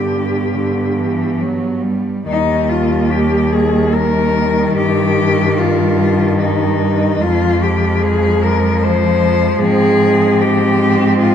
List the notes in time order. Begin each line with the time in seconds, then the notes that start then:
Already playing: G2 D3 B3 G4
0.51 D3
0.96 E3
1.40 F#3
1.82 G3
2.27 D#2 D#3 G3 D#4
2.69 F4
3.11 G4
3.52 G#4
3.94 A#4
4.76 G2 G4
5.58 F4
6.39 D#4
7.21 F2 F3 G#3 F4
7.63 G4
8.02 G#4
8.43 A#4
8.84 C5
9.59 G#2 C4 G#4
10.42 G4
11.19 F4